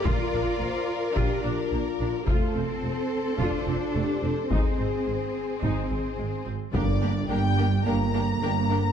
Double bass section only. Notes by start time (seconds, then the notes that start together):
0.04 A#1
0.33 A#1
0.60 A#1
1.16 A#1
1.44 A#1
1.72 A#1
2.00 A#1
2.28 F1
2.56 F1
2.83 F1
3.40 F1
3.68 F1
3.95 F1
4.24 F1
4.51 G#1
4.79 G#1
5.07 G#1
5.63 G#1
5.90 G#1
6.19 G#1
6.46 G#1
6.74 G1
7.30 G1
7.85 G1
8.41 G1